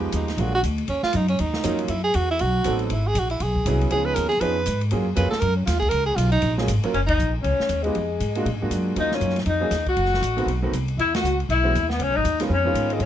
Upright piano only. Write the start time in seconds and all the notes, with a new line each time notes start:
Already playing: F3 G#3 B3 D#4 G4
0.39 F#3 G#3 A#3 D4 F4
1.64 F#3 A#3 C#4 D#4 F4
2.65 F#3 B3 C4 D#4 A4
3.67 F#3 B3 C#4 E4 G#4
3.91 F3 B3 C#4 D#4 G#4
4.41 F3 B3 C#4 D#4 G#4
4.91 F#3 A#3 C#4 F4 G#4
5.15 F#3 A#3 C#4 F4 G#4
6.58 F#3 A#3 C#4 F4 G#4
6.84 F#3 A#3 C#4 F4 A#4
7.84 G#3 B3 D#4 F4 G4
8.36 G#3 A#3 D4 F4 F#4
8.61 G#3 A#3 D4 F4 F#4
8.97 F#3 A#3 C#4 D#4 F4
9.60 F#3 A#3 C#4 D#4 G#4
10.37 D#3 A3 B3 C4 F#4
10.62 D#3 A3 B3 C4 F#4
11.63 E3 G#3 B3 C#4 F#4
12.40 D#3 G#3 B3 C#4 F4
12.65 D#3 G#3 B3 C#4 F4